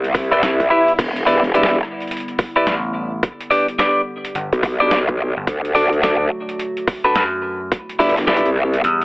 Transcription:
0.00 0.69 C2 loud
0.00 0.96 C3 medium
0.00 5.43 G3 medium
0.00 5.43 B3 medium
0.00 0.96 E4 medium
0.00 swell medium
0.04 closed hi-hat soft
0.15 kick loud
0.15 open hi-hat medium
0.31 0.41 E4 medium
0.31 0.41 G4 medium
0.31 0.41 B4 medium
0.31 0.41 D5 loud
0.31 closed hi-hat soft
0.43 snare loud
0.43 closed hi-hat medium
0.60 kick medium
0.60 closed hi-hat soft
0.70 0.92 E4 medium
0.70 0.92 G4 medium
0.70 0.92 B4 medium
0.70 0.92 E5 loud
0.88 closed hi-hat soft
0.99 1.81 E1 loud
0.99 7.68 D3 medium
0.99 3.21 E4 medium
0.99 kick loud
0.99 closed hi-hat medium
0.99 crash medium
1.16 closed hi-hat medium
1.26 1.42 E4 medium
1.26 1.42 G4 medium
1.26 1.42 B4 medium
1.26 1.42 D5 medium
1.26 open hi-hat medium
1.44 closed hi-hat soft
1.54 1.76 E4 medium
1.54 1.76 G4 medium
1.54 1.76 B4 medium
1.54 1.76 D5 medium
1.54 closed hi-hat medium
1.63 snare loud
1.83 cross-stick soft
2.00 closed hi-hat soft
2.08 closed hi-hat soft
2.11 closed hi-hat medium
2.17 closed hi-hat soft
2.20 closed hi-hat soft
2.28 closed hi-hat soft
2.39 kick loud
2.39 open hi-hat medium
2.56 2.74 E4 medium
2.56 2.74 G4 medium
2.56 2.74 B4 medium
2.56 2.74 D5 loud
2.67 3.21 A1 medium
2.67 snare loud
2.67 closed hi-hat medium
3.23 5.45 G4 medium
3.23 kick loud
3.23 closed hi-hat medium
3.40 closed hi-hat medium
3.51 3.66 D4 medium
3.51 3.66 G4 medium
3.51 3.66 B4 medium
3.51 3.66 D5 medium
3.51 open hi-hat medium
3.68 closed hi-hat soft
3.78 4.01 D4 medium
3.78 4.01 G4 medium
3.78 4.01 B4 medium
3.78 4.01 D5 medium
3.78 snare loud
3.78 closed hi-hat medium
4.25 closed hi-hat medium
4.35 4.50 G1 medium
4.35 closed hi-hat medium
4.53 5.34 B1 medium
4.53 closed hi-hat soft
4.63 kick loud
4.63 open hi-hat medium
4.80 4.98 D4 medium
4.80 4.98 G4 medium
4.80 4.98 B4 medium
4.80 4.98 D5 loud
4.91 snare loud
4.91 closed hi-hat medium
5.09 kick medium
5.37 5.46 G1 medium
5.47 6.30 D2 loud
5.47 7.69 F#3 medium
5.47 7.69 A3 medium
5.47 7.69 F#4 medium
5.47 kick loud
5.47 closed hi-hat medium
5.65 closed hi-hat medium
5.75 5.90 D4 medium
5.75 5.90 F#4 medium
5.75 5.90 A4 medium
5.75 5.90 D5 medium
5.75 open hi-hat medium
5.93 closed hi-hat soft
6.03 6.25 D4 medium
6.03 6.25 F#4 medium
6.03 6.25 A4 medium
6.03 6.25 D5 medium
6.03 snare loud
6.03 closed hi-hat medium
6.49 closed hi-hat medium
6.59 closed hi-hat medium
6.77 closed hi-hat soft
6.88 kick loud
6.88 open hi-hat medium
7.04 7.22 D4 medium
7.04 7.22 F#4 medium
7.04 7.22 A4 medium
7.04 7.22 B4 loud
7.16 7.70 F#2 medium
7.16 snare loud
7.16 closed hi-hat medium
7.71 9.05 C3 medium
7.71 9.05 G3 medium
7.71 9.05 B3 medium
7.71 9.05 E4 medium
7.71 kick loud
7.71 closed hi-hat medium
7.89 closed hi-hat medium
7.99 8.42 G1 loud
7.99 8.15 E4 medium
7.99 8.15 G4 medium
7.99 8.15 B4 medium
7.99 8.15 D5 medium
7.99 open hi-hat medium
8.09 open hi-hat soft
8.17 snare soft
8.17 closed hi-hat soft
8.17 open hi-hat soft
8.27 8.49 E4 medium
8.27 8.49 G4 medium
8.27 8.49 B4 medium
8.27 8.49 D5 medium
8.27 snare loud
8.37 closed hi-hat medium
8.45 8.82 C2 loud
8.45 closed hi-hat soft
8.56 cross-stick soft
8.73 closed hi-hat medium
8.84 9.05 E2 medium
8.84 closed hi-hat medium
9.01 closed hi-hat soft

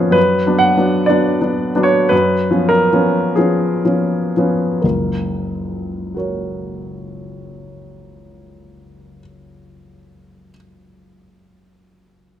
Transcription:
0.00 0.11 F#2 soft
0.00 0.19 F3 soft
0.00 0.19 B3 soft
0.00 0.18 C#4 soft
0.00 0.15 G#4 medium
0.00 0.19 A#4 medium
0.00 0.12 B4 medium
0.11 0.43 F#2 soft
0.11 0.60 B4 medium
0.46 0.74 F#3 soft
0.46 0.75 B3 soft
0.46 0.75 D4 soft
0.59 1.07 F#5 medium
0.77 1.06 F#3 soft
0.77 1.06 B3 soft
0.77 1.06 D4 soft
1.06 1.38 F#3 soft
1.06 1.38 B3 soft
1.06 1.38 D4 soft
1.06 1.83 D5 medium
1.41 1.72 F#3 soft
1.41 1.72 B3 soft
1.41 1.72 D4 soft
1.75 2.08 F#3 soft
1.75 2.08 B3 soft
1.75 2.08 D4 soft
1.83 2.11 C#5 medium
2.09 2.49 F#2 soft
2.09 2.69 B4 medium
2.51 2.88 F3 soft
2.51 2.88 B3 soft
2.51 2.88 C#4 soft
2.69 3.35 A#4 medium
2.93 3.33 F3 soft
2.93 3.33 B3 soft
2.93 3.33 C#4 soft
3.35 3.81 F3 soft
3.35 3.82 B3 soft
3.35 3.81 C#4 soft
3.35 4.82 G#4 soft
3.85 4.33 F3 soft
3.85 4.33 B3 soft
3.85 4.33 C#4 soft
4.37 4.79 F3 soft
4.37 4.80 B3 soft
4.37 4.80 C#4 soft
4.82 9.20 F#1 soft
4.82 9.19 C#2 soft
4.82 6.15 A#4 soft
6.14 10.50 F#4 soft
6.14 10.52 A#4 soft
6.14 10.54 C#5 soft

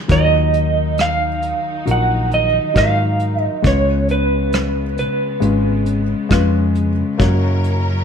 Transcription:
0.00 0.11 G#3 medium
0.00 0.11 C#4 medium
0.00 0.09 F4 medium
0.00 0.10 C#5 medium
0.08 3.60 D#2 medium
0.08 1.52 D#2 medium
0.08 3.60 D#3 medium
0.08 3.61 D#3 medium
0.08 1.28 F#3 medium
0.08 1.28 D#4 medium
0.08 3.61 D#4 medium
0.08 1.28 F4 medium
0.08 1.29 A#4 medium
0.08 1.01 D#5 medium
0.08 kick medium
0.08 closed hi-hat medium
0.54 closed hi-hat soft
0.98 1.84 F5 medium
0.98 cross-stick medium
0.98 closed hi-hat medium
1.42 closed hi-hat soft
1.85 2.58 A#1 medium
1.85 2.46 F3 soft
1.85 2.46 F#3 medium
1.85 2.46 D#4 medium
1.85 2.47 A#4 medium
1.85 closed hi-hat medium
1.91 2.34 F#5 medium
2.31 2.77 D#5 medium
2.31 closed hi-hat soft
2.74 3.47 G#2 medium
2.74 3.34 F#3 medium
2.74 3.35 D#4 medium
2.74 3.35 F4 medium
2.74 3.35 A#4 medium
2.74 3.43 F5 medium
2.74 kick medium
2.74 cross-stick medium
2.74 closed hi-hat medium
3.19 closed hi-hat soft
3.43 3.68 D#5 medium
3.62 7.15 C#2 medium
3.62 5.07 C#2 medium
3.62 7.15 C#3 medium
3.62 7.16 C#3 medium
3.62 4.83 G#3 medium
3.62 7.15 B3 medium
3.62 4.83 C#4 medium
3.62 4.83 F4 medium
3.62 4.83 B4 medium
3.62 kick medium
3.62 closed hi-hat medium
3.67 4.11 C#5 medium
4.09 4.95 B4 medium
4.09 closed hi-hat soft
4.53 cross-stick medium
4.53 closed hi-hat medium
4.98 6.72 B4 medium
4.98 closed hi-hat soft
5.40 6.13 G#1 medium
5.40 6.01 G#3 medium
5.40 6.01 C#4 medium
5.40 6.01 F4 medium
5.40 6.02 B4 medium
5.40 closed hi-hat medium
5.86 closed hi-hat soft
6.29 7.02 F2 medium
6.29 6.90 G#3 medium
6.29 6.90 C#4 medium
6.29 6.90 F4 medium
6.29 6.90 B4 medium
6.29 kick medium
6.29 cross-stick medium
6.29 closed hi-hat medium
6.75 closed hi-hat soft
7.18 8.04 F#1 medium
7.18 8.04 F#2 medium
7.18 8.04 F#3 medium
7.18 8.04 A#3 medium
7.18 8.04 C#4 medium
7.18 8.04 F#4 medium
7.18 8.04 A#4 medium
7.18 8.04 C#5 medium
7.18 kick medium
7.18 closed hi-hat medium
7.64 closed hi-hat soft

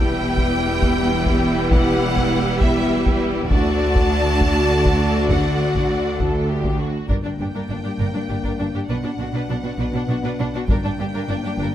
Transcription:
0.00 3.51 E1 medium
0.00 3.51 E2 medium
0.00 3.47 G3 medium
0.00 3.51 B3 medium
0.00 3.46 E4 medium
0.00 3.47 E4 medium
0.00 3.46 G4 medium
0.00 3.46 B4 medium
0.00 1.71 G5 medium
0.37 taiko medium
0.82 taiko medium
1.26 taiko medium
1.71 2.59 F#5 medium
1.71 taiko medium
2.16 taiko medium
2.61 3.20 E5 medium
2.61 taiko medium
3.06 taiko medium
3.50 6.85 D2 medium
3.50 6.89 D3 medium
3.50 6.75 A3 medium
3.50 6.85 D4 medium
3.50 6.80 F#4 medium
3.50 6.10 F#4 medium
3.50 6.09 D5 medium
3.50 5.26 A5 medium
3.50 taiko medium
3.95 taiko medium
4.40 taiko medium
4.85 taiko medium
5.29 6.18 F#5 medium
5.29 taiko medium
5.75 taiko medium
6.19 6.47 A4 soft
6.19 taiko medium
6.49 6.79 G4 soft
6.64 taiko medium
6.78 7.09 F#4 soft
7.08 7.15 G1 soft
7.08 7.15 G2 soft
7.08 8.85 A#3 soft
7.08 10.64 D4 soft
7.08 7.15 D4 soft
7.08 7.14 A#4 medium
7.08 8.85 G5 soft
7.08 taiko soft
7.24 7.30 G2 soft
7.24 7.30 D4 soft
7.24 7.31 D4 soft
7.39 7.45 G1 soft
7.39 7.45 G2 soft
7.39 7.46 D4 soft
7.39 7.46 G4 soft
7.53 7.60 G2 medium
7.53 7.61 D4 soft
7.53 7.61 A#4 soft
7.69 7.76 G1 soft
7.69 7.75 G2 soft
7.69 7.75 D4 soft
7.69 7.76 D4 soft
7.84 7.90 G2 soft
7.84 7.90 D4 soft
7.84 7.91 G4 soft
7.99 8.05 G1 medium
7.99 8.05 G2 medium
7.99 8.06 D4 soft
7.99 8.05 A#4 medium
8.14 8.20 G2 soft
8.14 8.20 D4 soft
8.14 8.21 D4 soft
8.28 8.35 G1 soft
8.28 8.35 G2 soft
8.28 8.35 D4 soft
8.28 8.35 G4 soft
8.44 8.50 G2 medium
8.44 8.50 D4 medium
8.44 8.50 A#4 medium
8.44 taiko soft
8.59 8.65 G1 soft
8.59 8.65 G2 soft
8.59 8.65 D4 soft
8.59 8.66 D4 soft
8.74 8.80 G2 soft
8.74 8.80 D4 soft
8.74 8.81 G4 soft
8.87 8.95 B1 medium
8.87 8.95 B2 medium
8.87 10.64 B3 soft
8.87 8.95 D4 medium
8.87 8.95 B4 medium
8.87 10.65 F#5 soft
9.04 9.10 B2 soft
9.04 9.10 D4 soft
9.04 9.11 D4 soft
9.18 9.25 B1 soft
9.18 9.25 B2 soft
9.18 9.25 D4 soft
9.18 9.26 F#4 soft
9.33 9.40 B2 medium
9.33 9.40 D4 soft
9.33 9.41 B4 soft
9.48 9.54 B1 soft
9.48 9.55 B2 soft
9.48 9.55 D4 soft
9.48 9.56 D4 soft
9.64 9.70 B2 soft
9.64 9.70 D4 soft
9.64 9.70 F#4 soft
9.78 9.84 B1 medium
9.78 9.84 B2 medium
9.78 9.85 D4 medium
9.78 9.86 B4 soft
9.93 10.00 B2 soft
9.93 10.01 D4 soft
10.08 10.14 B1 soft
10.08 10.14 B2 soft
10.08 10.16 D4 soft
10.08 10.16 F#4 soft
10.23 10.29 B2 medium
10.23 10.30 D4 medium
10.23 10.30 B4 medium
10.38 10.45 B1 soft
10.38 10.45 B2 soft
10.38 10.45 D4 medium
10.38 10.46 D4 medium
10.54 10.60 B2 soft
10.54 10.60 D4 medium
10.54 10.61 F#4 medium
10.68 10.74 G1 medium
10.68 10.75 G2 medium
10.68 11.75 A#3 medium
10.68 11.75 D4 medium
10.68 10.75 D4 medium
10.68 10.76 A#4 medium
10.68 11.75 G5 medium
10.68 taiko medium
10.84 10.90 G2 soft
10.84 10.90 D4 soft
10.98 11.04 G1 soft
10.98 11.04 G2 soft
10.98 11.05 D4 soft
10.98 11.05 G4 soft
11.14 11.20 G2 medium
11.14 11.20 D4 medium
11.14 11.20 A#4 medium
11.28 11.34 G1 soft
11.28 11.35 G2 soft
11.28 11.35 D4 soft
11.28 11.36 D4 medium
11.44 11.50 G2 soft
11.44 11.50 D4 soft
11.44 11.51 G4 soft
11.58 11.64 G1 medium
11.58 11.65 G2 medium
11.58 11.65 D4 medium
11.58 11.66 A#4 medium

